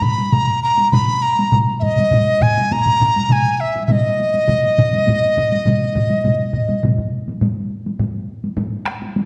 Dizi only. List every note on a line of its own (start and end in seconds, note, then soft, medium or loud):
0.02 0.34 B5 medium
0.33 0.63 A#5 medium
0.63 0.91 A#5 medium
0.92 1.24 B5 medium
1.22 1.57 A#5 medium
1.80 2.43 D#5 medium
1.80 1.84 E5 medium
2.42 2.74 G#5 medium
2.72 3.34 A#5 medium
3.32 3.57 G#5 medium
3.57 3.83 E5 medium
3.57 3.61 G#5 soft
3.86 3.93 E5 soft
3.92 6.84 D#5 medium